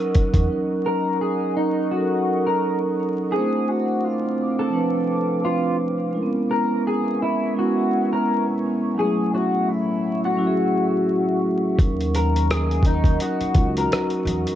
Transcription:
0.00 0.30 F#3 medium
0.00 0.31 C#4 medium
0.00 0.32 D#4 medium
0.00 0.32 A#4 loud
0.00 0.46 A#4 medium
0.00 0.46 D#5 medium
0.00 0.46 F#5 medium
0.00 0.44 C#6 medium
0.14 kick medium
0.14 closed hi-hat medium
0.34 0.47 E2 medium
0.34 kick medium
0.34 closed hi-hat soft
0.48 1.71 F#3 medium
0.48 1.72 C#4 medium
0.48 1.73 D#4 medium
0.48 3.28 A#4 medium
0.48 3.28 D#5 medium
0.48 3.28 F#5 medium
0.48 3.28 C#6 medium
0.52 1.74 A#4 medium
0.86 1.17 A#4 medium
1.21 1.52 G#4 medium
1.57 1.87 D#4 medium
1.90 3.13 F#3 medium
1.90 3.14 C#4 medium
1.90 3.15 D#4 medium
1.90 2.43 F#4 medium
1.94 2.00 A4 medium
2.01 3.19 A#4 medium
2.47 2.78 A#4 medium
3.30 4.54 C4 medium
3.30 6.11 C4 medium
3.30 4.55 D4 medium
3.30 3.38 E4 medium
3.30 3.68 G#4 medium
3.30 6.11 F5 medium
3.30 6.11 D6 medium
3.34 4.57 A3 medium
3.34 4.56 C5 medium
3.68 4.04 F#4 medium
4.04 4.55 F4 medium
4.59 5.40 A4 medium
4.70 5.94 F3 medium
4.70 5.95 C4 medium
4.70 5.96 D4 medium
4.75 5.97 B4 medium
5.45 5.76 F4 medium
6.11 7.36 G#3 medium
6.11 8.93 B3 medium
6.11 7.36 C#4 medium
6.11 7.37 E4 medium
6.11 8.93 E5 medium
6.11 8.93 G#5 medium
6.11 14.55 C#6 medium
6.16 6.22 A#4 medium
6.23 7.41 B3 medium
6.51 6.82 A#4 medium
6.87 7.18 G#4 medium
7.22 7.53 E4 medium
7.53 8.77 G#3 medium
7.53 8.78 C#4 medium
7.53 8.79 E4 medium
7.58 8.80 B3 medium
7.58 8.09 F#4 medium
8.13 8.43 A#4 medium
8.94 10.18 F#3 medium
8.94 11.76 A3 medium
8.94 10.19 C#4 medium
8.94 10.20 E4 medium
8.94 11.76 E5 medium
8.94 11.76 F#5 medium
8.99 10.21 A3 medium
8.99 9.29 G#4 medium
9.34 9.69 F#4 medium
9.69 10.20 E4 medium
10.25 11.76 F#4 medium
10.36 11.60 F#3 medium
10.36 11.60 C#4 medium
10.36 11.61 E4 medium
10.40 10.46 F#4 medium
10.47 11.65 G#4 loud
11.76 13.16 D#2 loud
11.76 13.00 F#3 medium
11.76 13.01 C#4 medium
11.76 13.02 D#4 medium
11.76 14.55 A#4 medium
11.76 14.55 D#5 medium
11.76 14.55 F#5 medium
11.76 kick loud
11.76 closed hi-hat medium
11.81 13.03 A#4 medium
12.01 closed hi-hat soft
12.15 12.47 A#4 medium
12.15 closed hi-hat medium
12.36 closed hi-hat soft
12.51 12.82 G#4 medium
12.51 cross-stick loud
12.51 closed hi-hat medium
12.71 closed hi-hat soft
12.83 13.17 D#4 medium
12.83 kick medium
12.83 closed hi-hat medium
13.04 kick medium
13.04 closed hi-hat soft
13.18 14.42 F#3 medium
13.18 14.43 C#4 medium
13.18 14.43 D#4 medium
13.18 closed hi-hat medium
13.22 13.73 F#4 medium
13.22 14.44 F#4 medium
13.40 muted upright bass stroke soft
13.40 closed hi-hat soft
13.55 13.85 C#2 medium
13.55 kick medium
13.55 closed hi-hat medium
13.77 14.08 A#4 medium
13.77 closed hi-hat medium
13.92 cross-stick loud
13.92 closed hi-hat medium
14.10 closed hi-hat soft
14.25 14.43 E2 medium
14.25 closed hi-hat medium
14.47 closed hi-hat soft

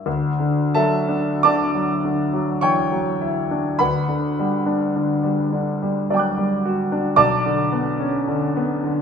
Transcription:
0.06 3.76 D2 soft
0.40 0.96 D3 soft
0.75 1.31 F#3 soft
0.75 1.40 A4 soft
0.75 1.40 E5 medium
0.75 1.43 A5 medium
1.09 1.62 D4 soft
1.43 1.93 D3 soft
1.43 2.60 D5 medium
1.43 2.60 A5 medium
1.43 2.63 D6 medium
1.74 2.22 F#3 soft
2.04 2.51 D3 soft
2.33 2.80 F#3 soft
2.61 2.92 E3 soft
2.61 3.76 C#5 medium
2.61 3.76 G5 medium
2.61 3.79 C#6 medium
2.91 3.39 F#3 soft
3.21 3.68 E4 soft
3.51 3.80 D4 soft
3.79 7.15 D2 soft
3.79 6.61 B4 medium
3.79 6.61 F#5 medium
3.79 6.64 B5 medium
4.08 4.55 D3 soft
4.39 4.85 G3 soft
4.66 5.13 D4 soft
4.96 5.42 D3 soft
5.23 5.70 G3 soft
5.52 5.98 D3 soft
5.82 6.27 G3 soft
6.10 6.38 F#3 soft
6.10 7.15 D5 soft
6.14 7.17 G5 soft
6.14 7.15 D6 soft
6.19 7.19 F#6 soft
6.37 6.81 G3 soft
6.65 7.08 F#4 soft
6.92 7.19 D4 soft
7.16 9.02 B1 medium
7.16 9.02 D5 medium
7.16 9.02 A5 medium
7.16 9.02 D6 medium
7.45 7.89 D3 soft
7.72 8.16 B3 soft
7.99 8.44 C#4 soft
8.28 8.71 D3 soft
8.56 9.00 B3 soft
8.84 9.02 D3 soft

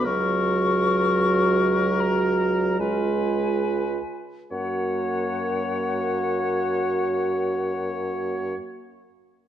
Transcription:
0.05 2.76 C#2 medium
0.05 2.80 F#3 medium
0.05 2.76 F#4 medium
0.05 2.79 A#4 medium
0.05 2.02 C#6 loud
2.00 2.81 A#5 medium
2.78 3.98 C#2 soft
2.78 4.00 G#3 soft
2.78 3.98 F4 soft
2.78 3.98 B4 soft
2.78 4.21 G#5 medium
4.51 8.55 F#2 medium
4.51 8.56 A#3 soft
4.51 8.56 F#4 soft
4.51 8.55 C#5 soft
4.51 8.56 F#5 medium

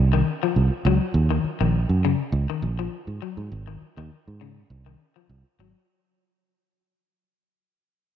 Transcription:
0.00 0.21 C2 loud
0.13 0.29 D#3 medium
0.43 0.59 F3 medium
0.56 0.69 C2 medium
0.85 0.98 C#2 loud
0.85 1.03 F#3 medium
1.14 1.39 D#2 loud
1.30 1.47 D#3 medium
1.44 muted fingered electric bass stroke soft
1.60 1.85 A#1 medium
1.60 1.77 D#3 medium
1.89 2.14 F#2 medium
2.05 2.21 C#3 medium
2.32 2.46 C#2 loud
2.50 2.66 D#3 medium
2.62 2.87 A#1 loud
2.79 2.95 F3 medium
3.07 3.19 G#2 medium
3.22 3.38 F#3 medium
3.37 3.49 G#2 medium
3.52 3.76 G#1 loud
3.67 3.84 D#3 medium
3.82 muted fingered electric bass stroke soft
3.97 4.09 D#2 loud
3.97 4.14 D#3 medium
4.28 4.63 G#2 medium
4.41 4.57 C#3 medium
4.70 4.94 C2 medium
4.86 5.02 D#3 medium
5.16 5.32 F3 medium
5.29 5.42 C2 medium
5.59 5.72 G#1 loud
5.59 5.76 F#3 medium

